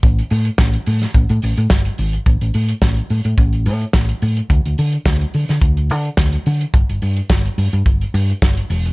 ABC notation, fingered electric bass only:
X:1
M:4/4
L:1/16
Q:1/4=107
K:Ddor
V:1 name="Fingered electric bass" clef=bass
A,,,2 A,,2 A,,,2 A,,2 A,,, A,, A,,, A,, G,,,2 ^G,,,2 | A,,, A,,, A,,2 A,,,2 A,, A,, A,,,2 A,,2 A,,,2 A,,2 | D,, D,, D,2 D,,2 D, D, D,,2 D,2 D,,2 D,2 | G,,, G,,, G,,2 G,,,2 G,, G,, G,,,2 G,,2 G,,,2 E,,,2 |]